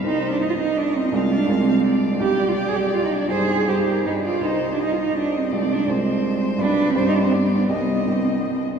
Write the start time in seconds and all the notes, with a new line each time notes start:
0.03 C2 G3 D#4 C5
0.32 D4
0.41 D#4 D#5
0.50 F4
0.58 D#4
0.77 D4
0.96 C4
1.12 C2 G#3 C4 F4 D5 F5
1.33 D4
1.48 C2 G#3 C4 F4 D5
1.87 D5
2.20 B1 G3 D4 G4 D5
2.48 F4
2.56 G4
2.68 G#4
2.76 G4
2.95 F4
3.06 D#4
3.13 D4
3.30 G2 G3 D#4 G#4 C5
3.67 G2 G3 D#4 G4 C5
3.89 A#4
4.04 G2 G3 D4 D#4 B4
4.24 F4 D5
4.41 C2 G3 D#4 C5
4.45 D#4
4.73 D4
4.80 D#4 D#5
4.93 F4
5.02 D#4
5.18 D4
5.37 C4
5.52 C2 G#3 C4 F4 D5
5.72 D4
5.87 C2 G#3 F4 C5 D5
5.92 C4
6.58 B1 G3 D4 B4 D5
6.90 C4
6.95 G2 G3 D4 G4 C5
7.08 D#4
7.15 D4
7.22 C4
7.31 G2 G3 B3 G4 D5
7.46 C4
7.53 B3
7.69 C2 G3 G4 D#5
7.74 B3
8.07 C2 G3 G4 D#5
8.12 C4